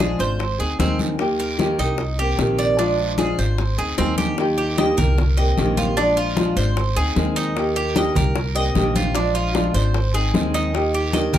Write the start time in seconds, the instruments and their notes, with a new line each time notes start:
Already playing: upright bass A#1
0.00 nylon-string guitar F3 G#3 D4 F4, cuban tres G#4, high bongo, high conga
0.19 upright bass G#1, nylon-string guitar G#3 D4 F4, cuban tres C5, high bongo, high conga, short guiro
0.39 muted nylon-string guitar stroke, high bongo, high conga, long guiro
0.59 upright bass D2, nylon-string guitar C4 D#4 G#4, cuban tres G#4, high conga
0.79 upright bass D#2, nylon-string guitar D#3 G#3 C4 D#4 G#4, cuban tres C4, high bongo, low bongo, high conga, short guiro
0.99 high bongo, high conga, short guiro
1.18 nylon-string guitar D#3 A#3 D#4 G4, high bongo, high conga, long guiro
1.40 cuban tres A#4, high conga
1.58 nylon-string guitar D#3 A#3 D#4 G4, high bongo, high conga, short guiro
1.79 upright bass C2, nylon-string guitar A#3 D#4 G4, cuban tres D#4, high conga, short guiro
1.98 muted nylon-string guitar stroke, high bongo, high conga, long guiro
2.19 nylon-string guitar A#3 C4 G4, cuban tres G4, high conga
2.38 upright bass A#1, nylon-string guitar C3 D#3 A#3 C4 G4, high bongo, low bongo, high conga, short guiro
2.59 cuban tres D5, high conga, short guiro
2.78 nylon-string guitar F3 G#3 D4 F4, cuban tres D4, high bongo, high conga, long guiro
2.98 high bongo, high conga
3.18 nylon-string guitar F3 G#3 D4 F4, cuban tres G#4, high bongo, high conga, short guiro
3.38 upright bass G#1, nylon-string guitar G#3 D4 F4, cuban tres C5, high bongo, high conga, short guiro
3.58 muted nylon-string guitar stroke, high bongo, high conga, long guiro
3.78 upright bass D2, nylon-string guitar C4 D#4 G#4, cuban tres G#4, high conga
3.98 upright bass D#2, nylon-string guitar D#3 G#3 C4 D#4 G#4, cuban tres C4, high bongo, high conga, short guiro
4.18 cuban tres G4, low bongo, high conga, short guiro
4.38 nylon-string guitar D#3 A#3 D#4 G4, high bongo, high conga, long guiro
4.58 cuban tres G4, high bongo, high conga
4.78 nylon-string guitar D#3 A#3 D#4 G4, cuban tres D#5, high bongo, high conga, short guiro
4.97 upright bass C2, nylon-string guitar A#3 D#4 G4, cuban tres A#4, high conga, low conga, short guiro
5.18 muted nylon-string guitar stroke, high bongo, high conga, low conga, long guiro
5.37 nylon-string guitar A#3 C4 G4, cuban tres D#5, high bongo, high conga
5.57 upright bass A#1, nylon-string guitar C3 D#3 A#3 C4 G4, high bongo, low bongo, high conga, short guiro
5.77 cuban tres F4, high bongo, high conga, short guiro
5.97 nylon-string guitar F3 G#3 D4 F4, cuban tres D4, high bongo, high conga, long guiro
6.17 cuban tres F4, high bongo, high conga
6.36 nylon-string guitar F3 G#3 D4 F4, high bongo, high conga, short guiro
6.56 upright bass G#1, nylon-string guitar G#3 D4 F4, cuban tres C5, high conga, short guiro
6.76 muted nylon-string guitar stroke, high bongo, high conga, long guiro
6.96 upright bass D2, nylon-string guitar C4 D#4 G#4, cuban tres G#4, high bongo, high conga
7.16 upright bass D#2, nylon-string guitar D#3 G#3 C4 D#4 G#4, high bongo, low bongo, high conga, short guiro
7.36 cuban tres D#4, high bongo, short guiro
7.56 nylon-string guitar D#3 A#3 D#4 G4, high bongo, high conga, long guiro
7.76 cuban tres G4, high bongo, high conga
7.95 nylon-string guitar D#3 A#3 D#4 G4, cuban tres D#5, high bongo, high conga, short guiro
8.15 upright bass C2, nylon-string guitar A#3 D#4 G4, cuban tres A#4, high conga, low conga, short guiro
8.35 muted nylon-string guitar stroke, high bongo, high conga, long guiro
8.55 nylon-string guitar A#3 C4 G4, cuban tres D#5, high bongo, high conga
8.75 upright bass A#1, nylon-string guitar C3 D#3 A#3 C4 G4, high bongo, low bongo, high conga, short guiro
8.95 cuban tres F4, high bongo, high conga, short guiro
9.14 nylon-string guitar F3 G#3 D4 F4, cuban tres D4, high bongo, high conga, long guiro
9.35 cuban tres F4, high bongo, high conga
9.54 nylon-string guitar F3 G#3 D4 F4, high bongo, high conga, short guiro
9.74 upright bass G#1, nylon-string guitar G#3 D4 F4, cuban tres C5, high conga, short guiro
9.94 muted nylon-string guitar stroke, high bongo, high conga, long guiro
10.14 nylon-string guitar C4 D#4 G#4, cuban tres G#4, high bongo, high conga
10.33 upright bass D#2, nylon-string guitar D#3 G#3 C4 D#4 G#4, high bongo, low bongo, high conga, short guiro
10.54 cuban tres D#4, high bongo, short guiro
10.73 nylon-string guitar D#3 A#3 D#4 G4, high bongo, high conga, long guiro
10.94 cuban tres G4, high bongo, high conga
11.13 nylon-string guitar D#3 A#3 D#4 G4, cuban tres D#5, high bongo, high conga, short guiro
11.33 upright bass C2, nylon-string guitar D#4 G4, cuban tres A#4, high conga, low conga, short guiro